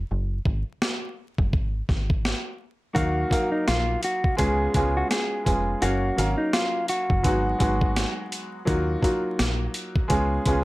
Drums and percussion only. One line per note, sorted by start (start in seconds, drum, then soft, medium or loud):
0.45 kick medium
0.82 snare loud
1.38 kick loud
1.53 kick loud
1.89 kick medium
1.89 snare soft
2.10 kick medium
2.25 snare medium
2.96 kick loud
2.96 closed hi-hat loud
3.31 kick medium
3.31 closed hi-hat medium
3.68 snare loud
3.68 closed hi-hat medium
4.03 closed hi-hat medium
4.24 kick loud
4.38 kick medium
4.38 closed hi-hat loud
4.74 kick medium
4.74 closed hi-hat medium
5.11 snare medium
5.11 closed hi-hat medium
5.46 kick medium
5.46 closed hi-hat medium
5.82 closed hi-hat loud
6.18 closed hi-hat medium
6.53 snare loud
6.53 closed hi-hat medium
6.88 closed hi-hat medium
7.10 kick loud
7.24 kick loud
7.24 closed hi-hat loud
7.60 kick medium
7.60 closed hi-hat medium
7.81 kick medium
7.96 snare medium
7.96 closed hi-hat medium
8.32 closed hi-hat medium
8.67 kick loud
8.67 closed hi-hat loud
9.03 kick medium
9.03 closed hi-hat medium
9.39 snare loud
9.39 closed hi-hat medium
9.74 closed hi-hat medium
9.96 kick loud
10.10 kick medium
10.10 closed hi-hat loud
10.46 kick medium
10.46 closed hi-hat medium